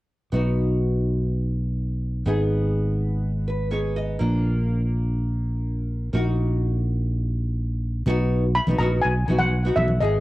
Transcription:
0.32 B1 B3 D#4 F#4
2.26 G#1 B3 D#4 G#4
3.48 B4
3.71 B3 D#4 G#4 C#5
3.96 D#5
4.19 A#1 A#3 D4 F4
6.13 A#1 A#3 D#4 F#4
8.06 B1 B3 D#4 F#4, low conga
8.55 B5
8.67 B1 B3 D#4 F#4, high conga
8.78 A#1 B3 D#4 F#4 A#5, low conga
9.02 B1 G#5
9.28 B1 B3 D#4 F#4, high conga
9.39 F#5, high conga
9.65 B3 D#4 F#4
9.76 B1 E5, high conga, low conga
9.88 high conga
10.01 G#1 B3 D#4 G#4 D#5, low conga

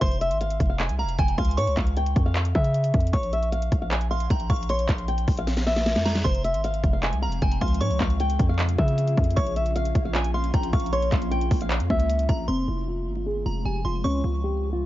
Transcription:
0.01 F1 C5 C6, kick, closed hi-hat
0.12 closed hi-hat
0.21 E5, closed hi-hat
0.31 G#1, closed hi-hat
0.41 F5, closed hi-hat
0.50 closed hi-hat
0.60 F1, kick, closed hi-hat
0.70 F5
0.80 G#5, clap, closed hi-hat
0.89 C2, closed hi-hat
0.99 F5 A#5
1.04 F1
1.09 closed hi-hat
1.19 F1 G5 G#5, kick, closed hi-hat
1.28 closed hi-hat
1.38 C#2 F5 C6, kick, closed hi-hat
1.45 closed hi-hat
1.51 closed hi-hat
1.57 G#2 C#5 C#6, closed hi-hat
1.67 C#2, closed hi-hat
1.77 C#2 F5, kick, clap, closed hi-hat
1.87 closed hi-hat
1.97 G5, closed hi-hat
2.06 closed hi-hat
2.16 F2, kick, closed hi-hat
2.26 F5
2.35 clap, closed hi-hat
2.45 closed hi-hat
2.55 C#3 E5, kick
2.64 closed hi-hat
2.74 closed hi-hat
2.84 closed hi-hat
2.94 F2, kick, closed hi-hat
3.00 closed hi-hat
3.07 closed hi-hat
3.13 A#1 C#5 C#6, kick, closed hi-hat
3.23 closed hi-hat
3.33 E5, closed hi-hat
3.43 closed hi-hat
3.52 F5, closed hi-hat
3.62 closed hi-hat
3.72 A#1, kick, closed hi-hat
3.82 F5
3.91 G#5, clap, closed hi-hat
4.01 closed hi-hat
4.11 F5 C6
4.20 closed hi-hat
4.30 A#1 G5 A#5, kick, closed hi-hat
4.40 closed hi-hat
4.50 A#1 F5 C#6, kick, closed hi-hat
4.56 closed hi-hat
4.63 closed hi-hat
4.69 C#5 C6, closed hi-hat
4.79 closed hi-hat
4.89 A#1 F5, kick, clap, closed hi-hat
4.98 closed hi-hat
5.08 G5, closed hi-hat
5.18 closed hi-hat
5.28 A#1, kick, closed hi-hat, open hi-hat
5.37 F5, closed hi-hat
5.47 snare, closed hi-hat
5.57 snare, closed hi-hat
5.67 E5, snare
5.76 snare, closed hi-hat
5.86 snare, closed hi-hat
5.96 F2, snare, closed hi-hat
6.05 A#5, snare, closed hi-hat
6.15 snare
6.24 F1 F3 G#3 C4 C5 C6, kick, closed hi-hat
6.35 closed hi-hat
6.44 E5, closed hi-hat
6.54 G#1, closed hi-hat
6.64 F5, closed hi-hat
6.74 closed hi-hat
6.84 F1, kick, closed hi-hat
6.93 F5
7.03 G#5, clap, closed hi-hat
7.13 C2, closed hi-hat
7.22 F5 A#5
7.27 F1
7.32 closed hi-hat
7.42 F1 G5 G#5, kick, closed hi-hat
7.52 closed hi-hat
7.61 C#2 F5 C6, kick, closed hi-hat
7.68 closed hi-hat
7.74 closed hi-hat
7.81 G#2 C#3 C#4 F4 G#4 C#5 C#6, closed hi-hat
7.91 C#2, closed hi-hat
8.00 C#2 F5, kick, clap, closed hi-hat
8.10 closed hi-hat
8.20 G5, closed hi-hat
8.30 closed hi-hat
8.39 F2, kick, closed hi-hat
8.49 F5
8.59 clap, closed hi-hat
8.69 closed hi-hat
8.78 C#3 E5, kick
8.88 closed hi-hat
8.98 closed hi-hat
9.07 closed hi-hat
9.17 F2, kick, closed hi-hat
9.24 closed hi-hat
9.30 closed hi-hat
9.36 A#1 A#3 C#5 C#6, kick, closed hi-hat
9.47 closed hi-hat
9.56 E5, closed hi-hat
9.66 closed hi-hat
9.76 F5, closed hi-hat
9.85 closed hi-hat
9.95 A#1, kick, closed hi-hat
10.05 F5
10.15 G#5, clap, closed hi-hat
10.24 closed hi-hat
10.34 F5 C6
10.44 closed hi-hat
10.54 A#1 G5 A#5, kick, closed hi-hat
10.63 closed hi-hat
10.73 A#1 F5 C#6, kick, closed hi-hat
10.80 closed hi-hat
10.86 closed hi-hat
10.93 C#5 C6, closed hi-hat
11.02 closed hi-hat
11.12 A#1 F5, kick, clap, closed hi-hat
11.22 closed hi-hat
11.31 G5, closed hi-hat
11.41 closed hi-hat
11.51 A#1, kick, closed hi-hat, open hi-hat
11.61 F5, closed hi-hat
11.70 clap, closed hi-hat
11.80 F2, closed hi-hat
11.90 C#2 E5, kick
12.00 closed hi-hat
12.10 closed hi-hat
12.19 closed hi-hat
12.29 A#1 A#5, kick, closed hi-hat
12.48 F1 F3 G#3 C4 C6
12.68 F1 E4
12.88 F4
13.07 G1
13.16 F4
13.26 G#4
13.45 F1 F4 A#5
13.65 F1 G4 G#5
13.85 F1 F4 C6
14.04 C#2 C#3 C#4 G#4 C#6
14.24 C#2 F4
14.44 G4
14.73 F4

